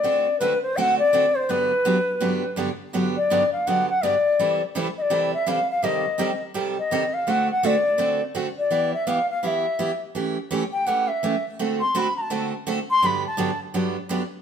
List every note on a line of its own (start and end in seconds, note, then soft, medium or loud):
0.00 0.26 D3 medium
0.00 0.39 D5 medium
0.04 0.26 A3 medium
0.04 0.26 C4 medium
0.04 0.26 F#4 medium
0.04 0.26 A4 medium
0.40 0.52 D3 medium
0.40 0.52 A3 medium
0.40 0.53 C4 medium
0.40 0.53 F#4 medium
0.40 0.53 A4 medium
0.40 0.62 B4 medium
0.63 0.78 C5 medium
0.77 0.99 D3 medium
0.77 0.99 A3 medium
0.77 0.99 C4 medium
0.77 0.99 F#4 medium
0.77 0.99 A4 medium
0.77 0.82 G5 loud
0.81 0.98 F#5 loud
0.99 1.37 D5 loud
1.13 1.25 D3 medium
1.13 1.25 A3 medium
1.13 1.25 C4 medium
1.13 1.25 F#4 medium
1.13 1.25 A4 medium
1.35 1.51 C5 medium
1.49 1.71 G2 medium
1.49 1.71 D3 medium
1.49 1.71 F#3 medium
1.49 1.71 B3 medium
1.49 1.71 D4 medium
1.49 1.71 G4 medium
1.49 2.58 B4 medium
1.85 1.97 G2 medium
1.85 1.97 D3 medium
1.85 1.97 F#3 medium
1.85 1.97 B3 medium
1.85 1.97 D4 medium
1.85 1.97 G4 medium
2.20 2.43 G2 medium
2.20 2.43 D3 medium
2.20 2.43 F#3 medium
2.20 2.43 B3 medium
2.20 2.43 D4 medium
2.20 2.43 G4 medium
2.56 2.68 G2 medium
2.56 2.69 D3 medium
2.56 2.69 F#3 medium
2.56 2.69 B3 medium
2.56 2.69 D4 medium
2.56 2.69 G4 medium
2.93 3.15 G2 medium
2.93 3.15 D3 medium
2.93 3.15 F#3 medium
2.93 3.16 B3 medium
2.93 3.16 D4 medium
2.93 3.16 G4 medium
3.17 3.51 D5 medium
3.30 3.42 G2 medium
3.30 3.42 D3 medium
3.30 3.42 F#3 medium
3.30 3.42 B3 medium
3.30 3.42 D4 medium
3.30 3.42 G4 medium
3.53 3.69 F5 medium
3.67 3.88 G2 medium
3.67 3.88 D3 medium
3.67 3.88 F#3 medium
3.67 3.89 B3 medium
3.67 3.89 D4 medium
3.67 3.89 G4 medium
3.67 3.89 F#5 medium
3.90 4.05 F#5 medium
4.03 4.14 G2 medium
4.03 4.14 D3 medium
4.03 4.14 F#3 medium
4.03 4.14 B3 medium
4.03 4.15 D4 medium
4.03 4.14 G4 medium
4.03 4.62 D5 medium
4.39 4.60 C3 medium
4.39 4.60 E3 medium
4.39 4.60 G3 medium
4.39 4.61 C4 medium
4.39 4.61 E4 medium
4.39 4.61 A4 medium
4.75 4.86 C3 medium
4.75 4.86 E3 medium
4.75 4.86 G3 medium
4.75 4.87 C4 medium
4.75 4.87 E4 medium
4.75 4.87 A4 medium
4.98 5.31 D5 medium
4.98 5.03 D#5 medium
5.10 5.32 C3 medium
5.10 5.32 E3 medium
5.10 5.32 G3 medium
5.10 5.32 C4 medium
5.10 5.32 E4 medium
5.10 5.32 A4 medium
5.34 5.50 E5 medium
5.46 5.58 C3 medium
5.46 5.58 E3 medium
5.46 5.58 G3 medium
5.46 5.59 C4 medium
5.46 5.58 E4 medium
5.46 5.59 A4 medium
5.46 5.70 F5 medium
5.71 5.85 F5 medium
5.83 6.04 C3 medium
5.83 6.05 D#3 medium
5.83 6.04 G3 medium
5.83 6.05 C4 medium
5.83 6.05 G4 medium
5.83 6.05 A4 medium
5.83 6.42 D#5 medium
6.18 6.30 C3 medium
6.18 6.30 D#3 medium
6.18 6.30 G3 medium
6.18 6.30 C4 medium
6.18 6.30 G4 medium
6.18 6.31 A4 medium
6.54 6.76 C3 medium
6.54 6.76 D#3 medium
6.54 6.76 G3 medium
6.54 6.76 C4 medium
6.54 6.76 G4 medium
6.54 6.77 A4 medium
6.79 7.15 D#5 medium
6.91 7.02 C3 medium
6.91 7.03 D#3 medium
6.91 7.03 G3 medium
6.91 7.03 C4 medium
6.91 7.03 G4 medium
6.91 7.03 A4 medium
7.14 7.31 F5 medium
7.27 7.48 D3 medium
7.27 7.48 A3 medium
7.27 7.49 C4 medium
7.27 7.49 F#4 medium
7.27 7.49 A4 medium
7.27 7.51 F#5 medium
7.52 7.67 F#5 medium
7.63 7.74 D3 medium
7.63 7.74 A3 medium
7.63 7.75 C4 medium
7.63 7.75 F#4 medium
7.63 7.75 A4 medium
7.63 8.23 D5 medium
7.98 8.20 D3 medium
7.98 8.20 A3 medium
7.98 8.20 C4 medium
7.98 8.20 F#4 medium
7.98 8.20 A4 medium
8.35 8.46 D3 medium
8.35 8.46 A3 medium
8.35 8.46 C4 medium
8.35 8.47 F#4 medium
8.35 8.47 A4 medium
8.58 8.91 D5 medium
8.71 8.92 E3 medium
8.71 8.92 B3 medium
8.71 8.92 E4 medium
8.71 8.93 G4 medium
8.94 9.09 E5 medium
9.07 9.18 E3 medium
9.07 9.18 B3 medium
9.07 9.18 E4 medium
9.07 9.19 G4 medium
9.07 9.29 F5 medium
9.30 9.44 F5 loud
9.43 9.64 E3 medium
9.43 9.64 B3 medium
9.43 9.65 E4 medium
9.43 9.65 G4 medium
9.43 9.48 F5 medium
9.47 10.02 E5 medium
9.79 9.90 E3 medium
9.79 9.90 B3 medium
9.79 9.90 E4 medium
9.79 9.91 G4 medium
10.15 10.36 E3 medium
10.15 10.36 A3 medium
10.15 10.36 C#4 medium
10.15 10.37 G4 medium
10.51 10.62 E3 medium
10.51 10.62 A3 medium
10.51 10.63 C#4 medium
10.51 10.63 G4 medium
10.73 10.88 G5 medium
10.86 11.08 E3 medium
10.86 11.08 A3 medium
10.86 11.09 C#4 medium
10.86 11.09 G4 medium
10.86 11.09 F#5 medium
11.08 11.45 E5 medium
11.23 11.34 E3 medium
11.23 11.34 A3 medium
11.23 11.34 C#4 medium
11.23 11.34 G4 medium
11.59 11.80 D3 medium
11.59 11.80 A3 medium
11.59 11.81 C4 medium
11.59 11.81 F#4 medium
11.59 11.81 A4 medium
11.80 11.99 C6 medium
11.95 12.06 D3 medium
11.95 12.06 A3 medium
11.95 12.06 C4 medium
11.95 12.07 F#4 medium
11.95 12.06 A4 medium
11.95 12.17 B5 medium
12.17 12.23 A#5 medium
12.22 12.51 A5 medium
12.30 12.52 D3 medium
12.30 12.52 A3 medium
12.30 12.52 C4 medium
12.30 12.52 F#4 medium
12.30 12.53 A4 medium
12.67 12.78 D3 medium
12.67 12.78 A3 medium
12.67 12.78 C4 medium
12.67 12.78 F#4 medium
12.67 12.79 A4 medium
12.90 13.07 C6 loud
13.02 13.24 G2 medium
13.02 13.24 D3 medium
13.02 13.24 F#3 medium
13.02 13.24 B3 medium
13.02 13.24 D4 medium
13.02 13.25 G4 medium
13.02 13.26 B5 medium
13.27 13.60 A5 medium
13.37 13.49 G2 medium
13.37 13.49 D3 medium
13.37 13.50 F#3 medium
13.37 13.50 B3 medium
13.37 13.50 D4 medium
13.37 13.50 G4 medium
13.74 13.95 G2 medium
13.74 13.96 D3 medium
13.74 13.96 F#3 medium
13.74 13.96 B3 medium
13.74 13.96 D4 medium
13.74 13.96 G4 medium
14.09 14.21 G2 medium
14.09 14.21 D3 medium
14.09 14.22 F#3 medium
14.09 14.22 B3 medium
14.09 14.22 D4 medium
14.09 14.22 G4 medium